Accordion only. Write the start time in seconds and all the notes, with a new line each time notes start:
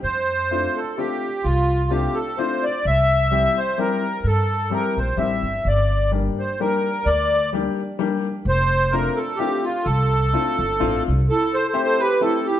0.03 C5
0.75 A4
0.97 G4
1.43 F4
1.90 G4
2.15 A4
2.38 C5
2.63 D5
2.87 E5
3.57 C5
3.79 A#4
4.27 A4
4.74 A#4
4.98 C5
5.19 E5
5.68 D5
6.39 C5
6.61 A#4
7.06 D5
8.49 C5
8.92 A#4
9.16 A4
9.36 G4
9.64 F4
9.84 A4
11.30 A4
11.54 C5
11.68 C5
11.83 C5
12.00 B4
12.21 A4
12.46 G4